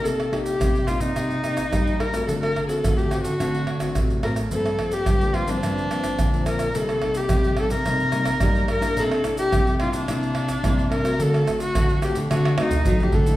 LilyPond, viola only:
\new Staff \with { instrumentName = "Viola" } { \time 4/4 \key c \dorian \tempo 4 = 108 a'8. g'8. f'16 ees'4.~ ees'16 bes'8 | a'16 bes'8 a'8 g'8 fis'4~ fis'16 r8 bes'8 | a'8. g'8. f'16 d'4.~ d'16 bes'8 | a'8. g'8. a'16 bes'4.~ bes'16 bes'8 |
a'8. g'8. f'16 d'4.~ d'16 bes'8 | a'8. fis'8. g'8 fis'8 ees'8. g'16 a'8 | }